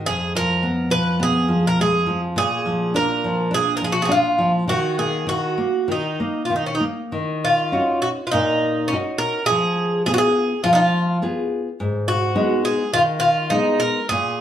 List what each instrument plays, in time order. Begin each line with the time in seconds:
0.06 nylon-string guitar F2, bouzouki G#4
0.35 nylon-string guitar F3, bouzouki A#4
0.63 nylon-string guitar B3
0.90 nylon-string guitar F3, bouzouki B4
1.20 nylon-string guitar B3, bouzouki G#4
1.48 nylon-string guitar F3
1.67 bouzouki A#4
1.79 nylon-string guitar G#3, bouzouki G#4
2.06 nylon-string guitar F3
2.36 nylon-string guitar A#2, bouzouki G#4
2.66 nylon-string guitar F3
2.94 nylon-string guitar D4, bouzouki A#4
3.24 nylon-string guitar F3
3.51 nylon-string guitar D4, bouzouki G#4
3.77 bouzouki A#4
3.81 nylon-string guitar F3, bouzouki G#4
3.92 bouzouki F#4
4.02 bouzouki F#4 G#4
4.09 nylon-string guitar D4, bouzouki F4
4.38 nylon-string guitar F3
4.68 nylon-string guitar D#3, bouzouki F#4
4.98 nylon-string guitar A#3, bouzouki G#4
5.27 nylon-string guitar D#3, bouzouki F#4
5.58 nylon-string guitar A#3
5.88 nylon-string guitar D#3, bouzouki D#4
6.20 nylon-string guitar A#3
6.45 bouzouki F4
6.50 nylon-string guitar D#3
6.56 bouzouki D#4
6.66 bouzouki C#4
6.75 bouzouki D#4
6.80 nylon-string guitar A#3
7.12 nylon-string guitar D#3
7.45 bouzouki F4
7.72 nylon-string guitar C#4 D#4 F#4
8.02 bouzouki F#4
8.27 bouzouki F4
8.32 nylon-string guitar A#2, bouzouki D#4
8.88 bouzouki C#4
8.93 nylon-string guitar C#4 D#4 F#4
9.18 bouzouki A#4
9.46 nylon-string guitar F3, bouzouki G#4
10.06 nylon-string guitar B3 F4 G#4, bouzouki G#4
10.14 bouzouki F#4
10.18 bouzouki G#4
10.64 nylon-string guitar F3, bouzouki F4
10.73 bouzouki D#4 F4
11.22 nylon-string guitar B3 F4 G#4
11.80 nylon-string guitar G#2
12.08 bouzouki F#4
12.36 nylon-string guitar G#3 B3 D#4
12.65 bouzouki G#4
12.93 nylon-string guitar D#3, bouzouki F4
13.20 bouzouki F4
13.50 nylon-string guitar G#3 B3 D#4, bouzouki D#4
13.80 bouzouki A#4
14.09 nylon-string guitar A#2, bouzouki G#4